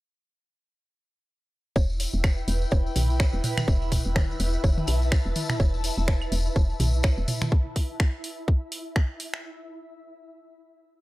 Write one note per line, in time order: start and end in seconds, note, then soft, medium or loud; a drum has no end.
1.76 2.06 E1 loud
1.76 9.45 E4 medium
1.76 7.52 E4 medium
1.76 9.45 E5 medium
1.76 kick loud
1.76 tambourine soft
1.76 high bongo medium
1.90 tambourine soft
1.98 4.67 G5 medium
1.98 open hi-hat medium
1.98 tambourine medium
2.03 7.52 B4 medium
2.14 2.42 E1 medium
2.14 tambourine soft
2.24 finger snap loud
2.24 kick loud
2.24 tambourine medium
2.24 high bongo soft
2.24 claves medium
2.38 tambourine soft
2.48 2.65 E1 loud
2.48 open hi-hat medium
2.48 tambourine medium
2.62 tambourine soft
2.71 2.89 E1 loud
2.71 kick loud
2.71 tambourine medium
2.71 high bongo medium
2.86 tambourine soft
2.96 3.26 B1 medium
2.96 mid tom medium
2.96 open hi-hat medium
2.96 high tom soft
2.96 tambourine medium
3.10 tambourine soft
3.20 finger snap medium
3.20 kick loud
3.20 tambourine medium
3.20 high bongo medium
3.33 3.40 E1 medium
3.33 tambourine soft
3.44 mid tom medium
3.44 open hi-hat medium
3.44 tambourine medium
3.58 finger snap medium
3.58 mid tom loud
3.58 high tom medium
3.58 tambourine soft
3.58 claves medium
3.68 3.98 E1 loud
3.68 kick loud
3.68 tambourine medium
3.68 high bongo soft
3.82 tambourine soft
3.92 kick medium
3.92 mid tom medium
3.92 open hi-hat medium
3.92 tambourine loud
4.05 4.34 E1 medium
4.05 tambourine soft
4.16 finger snap loud
4.16 kick loud
4.16 high tom medium
4.16 tambourine medium
4.16 high bongo medium
4.31 tambourine soft
4.40 4.57 E1 loud
4.40 open hi-hat medium
4.40 tambourine medium
4.53 7.52 A5 medium
4.53 tambourine soft
4.64 4.81 E1 loud
4.64 kick loud
4.64 high tom medium
4.64 tambourine medium
4.64 high bongo medium
4.78 high tom medium
4.78 tambourine soft
4.87 5.18 B1 medium
4.87 open hi-hat medium
4.87 tambourine medium
4.87 claves medium
5.02 tambourine soft
5.12 finger snap medium
5.12 kick loud
5.12 tambourine medium
5.12 high bongo soft
5.26 5.33 E1 medium
5.26 tambourine soft
5.36 open hi-hat medium
5.36 high tom medium
5.36 tambourine loud
5.50 finger snap medium
5.50 mid tom loud
5.50 tambourine soft
5.60 5.90 E1 medium
5.60 kick loud
5.60 tambourine medium
5.60 high bongo medium
5.74 tambourine soft
5.84 open hi-hat medium
5.84 tambourine loud
5.98 6.26 E1 medium
5.98 tambourine soft
6.08 finger snap medium
6.08 kick loud
6.08 tambourine medium
6.08 high bongo medium
6.22 tambourine soft
6.22 claves medium
6.32 6.49 E1 loud
6.32 open hi-hat medium
6.32 tambourine medium
6.45 tambourine soft
6.56 6.73 E1 loud
6.56 kick loud
6.56 tambourine medium
6.56 high bongo soft
6.70 tambourine soft
6.80 7.10 B1 medium
6.80 mid tom medium
6.80 open hi-hat medium
6.80 high tom medium
6.80 tambourine medium
6.94 tambourine soft
7.03 finger snap medium
7.03 kick loud
7.03 tambourine medium
7.03 high bongo medium
7.17 7.25 E1 medium
7.17 tambourine soft
7.28 mid tom medium
7.28 open hi-hat medium
7.28 tambourine loud
7.41 finger snap medium
7.41 mid tom medium
7.41 high tom medium
7.41 tambourine soft
7.52 kick loud
7.76 kick medium
7.76 open hi-hat medium
8.00 finger snap medium
8.00 kick loud
8.24 open hi-hat medium
8.48 kick loud
8.72 open hi-hat medium
8.96 finger snap medium
8.96 kick loud
9.20 open hi-hat medium
9.34 finger snap medium